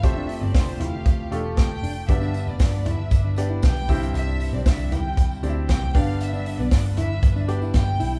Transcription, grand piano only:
<<
  \new Staff \with { instrumentName = "Grand piano" } { \time 4/4 \key g \mixolydian \tempo 4 = 117 <a f' g' c''>2 r8 <a f' g' a'>4. | <b d' g' d''>2 r8 <b d' g' d''>4 <c' e' g' e''>8~ | <c' e' g' e''>4. r4 <c' e' g' d'' e''>4 <b d' g' d''>8~ | <b d' g' d''>4. r4 <b d' g' d''>4. | }
  \new Staff \with { instrumentName = "Grand piano" } { \clef bass \time 4/4 \key g \mixolydian c4. r2 r8 | <g, d>4. r2 g,8~ | g,4 r2 r8 <g, d>8~ | <g, d>4 r2. | }
>>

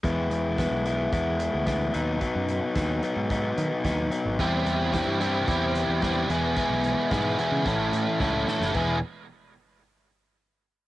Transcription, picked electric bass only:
\new Staff \with { instrumentName = "Picked electric bass" } { \clef bass \time 4/4 \key b \mixolydian \tempo 4 = 110 e,8 e,8. b,,8. e,8. d,8. dis,8 | r16 fis,8 r16 dis,8 r16 gis,8. dis16 r16 dis,8 r16 gis,,16 | e,8 e,8. g,8. e,8. e,8. e,8 | r16 b,,8 r16 gis,8 r16 cis16 a,,8 a,16 r16 cis,8 r16 fis,,16 |
e,,8 r2. r8 | }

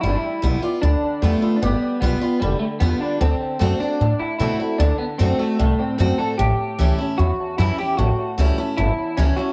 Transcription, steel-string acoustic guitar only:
\new Staff \with { instrumentName = "Steel-string acoustic guitar" } { \time 4/4 \key g \major \tempo 4 = 151 << { r4 <g b f'>8 <b f'>8 r4 <g b f'>8 <b f'>8 | r4 <g b f'>8 <b f'>8 r4 <g b f'>4 | r4 <d a c' fis'>8 <c' fis'>8 r4 <d a c' fis'>8 <c' fis'>8 | r4 <d a c' fis'>8 <c' fis'>8 r4 <d a c' fis'>8 <c' fis'>8 |
r4 <e g cis' e'>8 <cis' e'>8 r4 <e g cis' e'>8 <cis' e'>8 | r4 <e g cis' e'>8 <cis' e'>8 r4 <e g cis' e'>8 <cis' e'>8 | } \\ { g2 d2 | g2 d2 | d2 a,2 | d2 a,2 |
a,2 e,2 | a,2 e,2 | } >> }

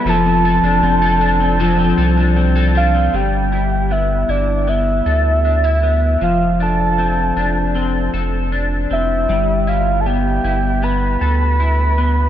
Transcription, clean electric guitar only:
\new Staff \with { instrumentName = "Clean electric guitar" } { \time 4/4 \key g \mixolydian \tempo 4 = 78 <f a'>16 c'16 a'16 d'16 c'16 a'16 d'16 c'16 <f a'>16 c'16 a'16 d'16 c'16 a'16 d'16 c'16 | g8 e'8 b8 e'8 b8 a'8 d'16 e'16 b8 | f8 d'8 c'8 d'8 c'8 a'8 d'8 c'8 | g8 e'8 b8 e'8 b8 a'8 e'8 b8 | }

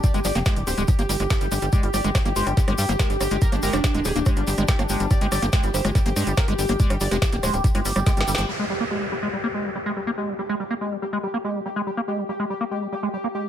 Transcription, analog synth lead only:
\new Staff \with { instrumentName = "Analog synth lead" } { \time 4/4 \key g \phrygian \tempo 4 = 142 << { d''8 d''8 r8 c''8 r4 g'8 r8 | d''8 d''8 r8 c''8 r4 bes'8 r8 | bes'8 bes'8 r8 aes'8 r4 g'8 r8 | d''8 d''8 r8 c''8 r4 bes'8 r8 |
d''8 d''8 r8 c''8 r4 g'8 r8 | r1 | r1 | r1 | } \\ { r16 g'16 r16 g'16 g'16 g'16 r16 g'16 r16 g'16 g'16 g'16 r16 g'16 g'16 g'16 | r16 g'16 r16 g'16 g'16 g'16 r16 g'16 r16 g'16 g'16 g'16 r16 g'16 g'16 g'16 | r16 d'16 r16 d'16 d'16 d'16 r16 d'16 r16 d'16 d'16 d'16 r16 d'16 d'16 d'16 | r16 g'16 r16 g'16 g'16 g'16 r16 g'16 r16 g'16 g'16 g'16 r16 g'16 g'16 g'16 |
r16 g'16 r16 g'16 g'16 g'16 r16 g'16 r16 g'16 g'16 g'16 r16 g'16 g'16 g'16 | r1 | r1 | r1 | } >> }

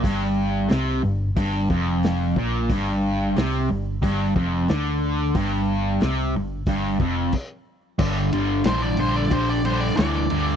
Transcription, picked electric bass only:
\new Staff \with { instrumentName = "Picked electric bass" } { \clef bass \time 4/4 \key g \minor \tempo 4 = 90 g,,4 c,8 g,,8 g,,8 f,,4 bes,,8 | g,,4 c,8 g,,8 g,,8 f,,8 d,4 | g,,4 c,8 g,,8 g,,8 f,,8 r4 | g,,8 g,,8 bes,,8 bes,,8 bes,,4 d,8 d,8 | }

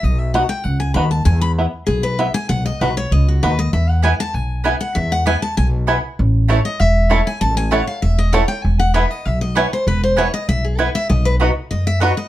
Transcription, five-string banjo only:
\new Staff \with { instrumentName = "Five-string banjo" } { \time 4/4 \key e \major \tempo 4 = 195 r4 <b dis' fis'>8 r4. <b dis' fis'>8 r8 | r4 <b e'>8 r4. <b e'>8 r8 | r4 <b dis' fis'>8 r4. <b dis' fis'>8 r8 | r4 <b e'>8 r4. <b e'>8 r8 |
r4 <b e'>8 r4. <b e'>8 r8 | r4 <a cis' e'>8 r4. <a cis' e'>8 r8 | r4 <a cis' e'>8 r4. <a cis' e'>8 r8 | r4 <b e'>8 r4. <b e'>8 r8 |
r4 <b e'>8 r4. <b e'>8 r8 | r4 <b dis' fis'>8 r4. <b dis' fis'>8 r8 | }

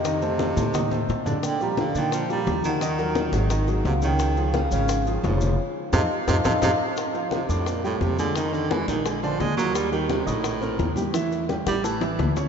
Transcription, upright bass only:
\new Staff \with { instrumentName = "Upright bass" } { \clef bass \time 4/4 \key f \mixolydian \tempo 4 = 173 f,4. a,4. bes,4~ | bes,4. bes,4. ees,4~ | ees,4. aes,,4. des,4~ | des,4. aes,,4. f,,4 |
r4 f,8 r8 f,8 f,8 f,8 r8 | r4. f,4. f,4~ | f,4. bes,,4. ees,4~ | ees,4. bes,,4. e,4~ |
e,4. a,,4. d,4 | }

